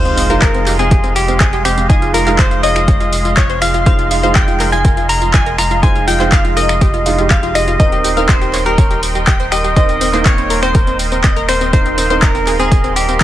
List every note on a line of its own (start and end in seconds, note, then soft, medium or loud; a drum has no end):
0.00 7.77 F1 medium
0.00 0.27 G#3 medium
0.00 7.76 G#3 medium
0.00 0.27 D#4 medium
0.00 0.27 F4 medium
0.00 0.44 C5 medium
0.00 13.23 D#5 medium
0.00 7.76 F5 medium
0.00 7.76 C6 loud
0.00 sub drop medium
0.05 0.12 C4 medium
0.05 closed hi-hat soft
0.05 tambourine soft
0.17 0.24 C4 medium
0.17 open hi-hat loud
0.17 tambourine medium
0.30 1.87 G#3 medium
0.30 1.87 D#4 medium
0.30 1.87 F4 medium
0.30 0.36 A#4 loud
0.30 closed hi-hat soft
0.30 tambourine soft
0.42 0.49 C4 medium
0.42 0.79 A#4 medium
0.42 0.80 A#4 medium
0.42 kick loud
0.42 clap loud
0.42 closed hi-hat loud
0.42 tambourine soft
0.54 0.61 C4 medium
0.54 closed hi-hat soft
0.54 tambourine soft
0.66 0.73 G4 medium
0.66 clap soft
0.66 open hi-hat medium
0.66 tambourine medium
0.79 0.85 C4 medium
0.79 1.17 G#4 loud
0.79 1.15 G#4 medium
0.79 closed hi-hat soft
0.79 tambourine soft
0.91 0.98 G4 medium
0.91 kick loud
0.91 closed hi-hat loud
0.91 tambourine soft
1.04 1.10 C4 medium
1.04 closed hi-hat soft
1.04 tambourine soft
1.16 1.40 G4 medium
1.16 1.41 G4 medium
1.16 open hi-hat loud
1.16 tambourine medium
1.28 1.35 C4 medium
1.28 closed hi-hat soft
1.28 tambourine soft
1.40 1.47 C4 medium
1.40 1.65 G#4 medium
1.40 1.66 G#4 medium
1.40 kick loud
1.40 clap loud
1.40 closed hi-hat loud
1.40 tambourine soft
1.53 1.59 G4 medium
1.53 closed hi-hat soft
1.53 tambourine soft
1.65 1.72 C4 medium
1.65 1.90 G4 medium
1.65 1.89 G4 medium
1.65 finger snap medium
1.65 open hi-hat loud
1.65 tambourine medium
1.77 1.84 C4 medium
1.77 closed hi-hat soft
1.77 tambourine soft
1.89 2.24 G#3 medium
1.89 2.24 D#4 medium
1.89 2.24 F4 medium
1.89 2.12 G#4 medium
1.89 1.96 D#5 loud
1.89 kick loud
1.89 closed hi-hat medium
1.89 tambourine soft
2.02 2.08 F4 medium
2.02 closed hi-hat soft
2.02 tambourine soft
2.14 2.21 F4 medium
2.14 2.39 A#4 medium
2.14 2.40 A#4 loud
2.14 open hi-hat loud
2.14 tambourine medium
2.26 3.83 G#3 medium
2.26 3.83 D#4 medium
2.26 3.83 F4 loud
2.26 2.33 F5 loud
2.26 clap soft
2.26 closed hi-hat soft
2.26 tambourine soft
2.39 2.45 F4 medium
2.39 2.63 C5 loud
2.39 2.64 C5 loud
2.39 kick loud
2.39 clap loud
2.39 closed hi-hat loud
2.39 tambourine soft
2.51 2.58 F4 medium
2.51 closed hi-hat soft
2.51 tambourine soft
2.63 2.70 C#5 medium
2.63 3.37 D#5 loud
2.63 3.39 D#5 loud
2.63 open hi-hat medium
2.63 tambourine medium
2.76 2.82 F4 medium
2.76 finger snap medium
2.76 closed hi-hat soft
2.76 tambourine soft
2.88 2.94 C#5 medium
2.88 kick loud
2.88 closed hi-hat loud
2.88 tambourine soft
3.00 3.07 F4 medium
3.00 closed hi-hat soft
3.00 tambourine soft
3.13 open hi-hat loud
3.13 tambourine medium
3.25 3.31 F4 medium
3.25 closed hi-hat soft
3.25 tambourine soft
3.37 3.61 C#5 loud
3.37 3.63 C#5 loud
3.37 kick loud
3.37 clap loud
3.37 closed hi-hat loud
3.37 tambourine soft
3.50 3.56 C5 medium
3.50 closed hi-hat soft
3.50 tambourine soft
3.62 3.68 F4 medium
3.62 3.85 F5 medium
3.62 3.85 F5 loud
3.62 finger snap medium
3.62 open hi-hat loud
3.62 tambourine medium
3.74 3.81 F4 medium
3.74 closed hi-hat soft
3.74 tambourine soft
3.86 4.20 G#3 medium
3.86 4.20 D#4 medium
3.86 4.20 F4 medium
3.86 3.93 C5 loud
3.86 4.35 F5 loud
3.86 4.37 F5 loud
3.86 kick loud
3.86 closed hi-hat medium
3.86 tambourine soft
3.99 4.05 F4 medium
3.99 closed hi-hat soft
3.99 tambourine soft
4.11 4.17 F4 medium
4.11 open hi-hat loud
4.11 tambourine medium
4.23 5.80 G#3 medium
4.23 5.80 D#4 medium
4.23 5.80 F4 medium
4.23 4.30 C5 loud
4.23 closed hi-hat soft
4.23 tambourine soft
4.35 4.42 F4 medium
4.35 4.72 G5 loud
4.35 4.74 G5 loud
4.35 kick loud
4.35 clap loud
4.35 closed hi-hat loud
4.35 tambourine soft
4.48 4.54 F4 medium
4.48 closed hi-hat soft
4.48 tambourine soft
4.60 4.67 A#4 medium
4.60 clap soft
4.60 open hi-hat medium
4.60 tambourine medium
4.72 4.79 F4 medium
4.72 5.09 G#5 loud
4.72 5.10 G#5 loud
4.72 closed hi-hat soft
4.72 tambourine soft
4.85 4.91 A#4 medium
4.85 kick loud
4.85 closed hi-hat medium
4.85 tambourine soft
4.97 5.04 F4 medium
4.97 closed hi-hat soft
4.97 tambourine soft
5.09 5.33 A#5 loud
5.09 5.35 A#5 loud
5.09 open hi-hat loud
5.09 tambourine medium
5.22 5.28 F4 medium
5.22 closed hi-hat soft
5.22 tambourine soft
5.34 5.40 F4 medium
5.34 5.58 G#5 loud
5.34 5.59 G#5 loud
5.34 kick loud
5.34 clap loud
5.34 closed hi-hat medium
5.34 tambourine soft
5.46 5.53 A#4 medium
5.46 closed hi-hat soft
5.46 tambourine soft
5.58 5.65 F4 medium
5.58 5.83 A#5 loud
5.58 5.84 A#5 loud
5.58 finger snap medium
5.58 open hi-hat loud
5.58 tambourine medium
5.71 5.77 F4 medium
5.71 closed hi-hat soft
5.71 tambourine soft
5.83 6.17 G#3 medium
5.83 6.17 D#4 medium
5.83 6.17 F4 medium
5.83 5.90 C5 loud
5.83 6.07 G#5 loud
5.83 6.08 G#5 loud
5.83 kick loud
5.83 closed hi-hat medium
5.83 tambourine soft
5.96 6.02 F4 medium
5.96 closed hi-hat soft
5.96 tambourine soft
6.08 6.14 F4 medium
6.08 6.33 G5 loud
6.08 open hi-hat loud
6.08 tambourine medium
6.20 7.04 G#3 medium
6.20 7.04 D#4 medium
6.20 7.04 F4 medium
6.20 6.26 C5 loud
6.20 clap soft
6.20 closed hi-hat soft
6.20 tambourine soft
6.32 6.39 F4 medium
6.32 6.57 F5 loud
6.32 6.56 F5 loud
6.32 kick loud
6.32 clap loud
6.32 closed hi-hat loud
6.32 tambourine soft
6.45 6.51 F4 medium
6.45 closed hi-hat soft
6.45 tambourine soft
6.57 6.63 A#4 medium
6.57 7.33 D#5 loud
6.57 open hi-hat medium
6.57 tambourine medium
6.69 6.76 F4 medium
6.69 finger snap medium
6.69 closed hi-hat soft
6.69 tambourine soft
6.81 6.88 G4 medium
6.81 kick loud
6.81 closed hi-hat medium
6.81 tambourine soft
6.94 7.00 F4 medium
6.94 closed hi-hat soft
6.94 tambourine soft
7.06 7.15 G#3 medium
7.06 7.15 D#4 medium
7.06 7.15 F4 loud
7.06 open hi-hat loud
7.06 tambourine medium
7.18 7.77 G#3 medium
7.18 7.77 D#4 medium
7.18 7.25 F4 medium
7.18 7.77 G4 medium
7.18 closed hi-hat soft
7.18 tambourine soft
7.30 7.37 F4 medium
7.30 7.56 F5 loud
7.30 kick loud
7.30 clap loud
7.30 closed hi-hat medium
7.30 tambourine soft
7.43 7.49 F4 medium
7.43 closed hi-hat soft
7.43 tambourine soft
7.55 7.62 F4 medium
7.55 7.78 D#5 loud
7.55 7.79 D#5 loud
7.55 finger snap medium
7.55 open hi-hat loud
7.55 tambourine medium
7.68 7.74 F4 medium
7.68 closed hi-hat soft
7.68 tambourine soft
7.80 13.23 D#1 medium
7.80 8.14 C4 medium
7.80 8.14 D#4 medium
7.80 8.14 A#4 medium
7.80 13.23 A#4 medium
7.80 8.28 D#5 loud
7.80 7.86 D#5 loud
7.80 8.30 D#5 loud
7.80 11.69 G5 medium
7.80 kick loud
7.80 closed hi-hat medium
7.80 tambourine soft
7.92 7.99 G4 medium
7.92 closed hi-hat soft
7.92 tambourine soft
8.04 8.11 G4 medium
8.04 open hi-hat loud
8.04 tambourine medium
8.17 9.74 C4 medium
8.17 9.74 D#4 medium
8.17 9.74 A#4 loud
8.17 8.23 F5 loud
8.17 closed hi-hat soft
8.17 tambourine soft
8.29 8.35 G4 medium
8.29 8.66 C5 loud
8.29 8.67 C5 loud
8.29 kick loud
8.29 clap loud
8.29 closed hi-hat loud
8.29 tambourine soft
8.41 8.48 G4 medium
8.41 closed hi-hat soft
8.41 tambourine soft
8.53 8.60 C#5 medium
8.53 clap soft
8.53 open hi-hat medium
8.53 tambourine medium
8.66 8.72 G4 medium
8.66 9.00 A#4 medium
8.66 closed hi-hat soft
8.66 tambourine soft
8.78 8.85 C#5 medium
8.78 kick loud
8.78 closed hi-hat medium
8.78 tambourine soft
8.91 8.97 G4 medium
8.91 closed hi-hat soft
8.91 tambourine soft
9.03 open hi-hat loud
9.03 tambourine medium
9.15 9.22 G4 medium
9.15 closed hi-hat soft
9.15 tambourine soft
9.27 9.34 G4 medium
9.27 9.51 G5 loud
9.27 9.53 G5 loud
9.27 kick loud
9.27 clap loud
9.27 closed hi-hat medium
9.27 tambourine soft
9.40 9.46 C5 medium
9.40 closed hi-hat soft
9.40 tambourine soft
9.52 9.58 G4 medium
9.52 9.75 D#5 loud
9.52 finger snap medium
9.52 open hi-hat loud
9.52 tambourine medium
9.64 9.71 G4 medium
9.64 closed hi-hat soft
9.64 tambourine soft
9.76 10.11 C4 medium
9.76 10.11 D#4 medium
9.76 10.11 A#4 medium
9.76 9.83 C5 loud
9.76 10.25 D#5 loud
9.76 10.27 D#5 loud
9.76 kick loud
9.76 closed hi-hat medium
9.76 tambourine soft
9.89 9.95 C4 medium
9.89 closed hi-hat soft
9.89 tambourine soft
10.01 10.08 C4 medium
10.01 open hi-hat loud
10.01 tambourine medium
10.13 11.70 A#3 medium
10.13 11.70 D#4 medium
10.13 11.70 A#4 medium
10.13 10.20 C5 loud
10.13 clap soft
10.13 closed hi-hat soft
10.13 tambourine soft
10.25 10.32 C4 medium
10.25 10.62 C#5 medium
10.25 10.64 C#5 loud
10.25 kick loud
10.25 clap loud
10.25 closed hi-hat medium
10.25 tambourine soft
10.38 10.45 C4 medium
10.38 closed hi-hat soft
10.38 tambourine soft
10.50 10.57 A#4 medium
10.50 open hi-hat medium
10.50 tambourine medium
10.63 10.69 C4 medium
10.63 10.97 C5 medium
10.63 finger snap medium
10.63 closed hi-hat soft
10.63 tambourine soft
10.75 10.81 A#4 medium
10.75 kick loud
10.75 closed hi-hat medium
10.75 tambourine soft
10.87 10.94 C4 medium
10.87 closed hi-hat soft
10.87 tambourine soft
10.99 open hi-hat loud
10.99 tambourine medium
11.12 11.18 C4 medium
11.12 closed hi-hat soft
11.12 tambourine soft
11.24 11.31 C4 medium
11.24 11.49 D#5 medium
11.24 11.48 D#5 medium
11.24 kick loud
11.24 clap loud
11.24 closed hi-hat loud
11.24 tambourine soft
11.36 11.43 A#4 loud
11.36 closed hi-hat soft
11.36 tambourine soft
11.49 11.55 C4 medium
11.49 11.72 C5 medium
11.49 finger snap medium
11.49 open hi-hat medium
11.49 tambourine medium
11.61 11.67 C4 medium
11.61 closed hi-hat soft
11.61 tambourine soft
11.73 12.07 C4 medium
11.73 12.07 D#4 medium
11.73 12.07 A#4 medium
11.73 11.80 A#4 loud
11.73 12.24 C5 loud
11.73 12.24 C5 medium
11.73 13.23 F5 medium
11.73 kick loud
11.73 closed hi-hat medium
11.73 tambourine soft
11.86 11.92 C4 medium
11.86 closed hi-hat soft
11.86 tambourine soft
11.98 12.04 C4 medium
11.98 open hi-hat loud
11.98 tambourine medium
12.10 13.23 C4 medium
12.10 13.23 D#4 medium
12.10 13.23 A#4 medium
12.10 12.17 C5 loud
12.10 closed hi-hat soft
12.10 tambourine soft
12.22 12.29 C4 medium
12.22 12.59 A#4 medium
12.22 12.61 A#4 medium
12.22 kick loud
12.22 clap loud
12.22 closed hi-hat loud
12.22 tambourine soft
12.35 12.41 C4 medium
12.35 closed hi-hat soft
12.35 tambourine soft
12.47 12.54 G#4 medium
12.47 clap soft
12.47 open hi-hat medium
12.47 tambourine medium
12.59 12.66 C4 medium
12.59 12.96 G#4 medium
12.59 12.97 G#4 medium
12.59 closed hi-hat soft
12.59 tambourine soft
12.72 12.78 G#4 medium
12.72 kick loud
12.72 closed hi-hat loud
12.72 tambourine soft
12.84 12.90 C4 medium
12.84 closed hi-hat soft
12.84 tambourine soft
12.96 13.19 G4 medium
12.96 open hi-hat loud
12.96 tambourine medium
13.09 13.15 C4 medium
13.09 closed hi-hat soft
13.09 tambourine soft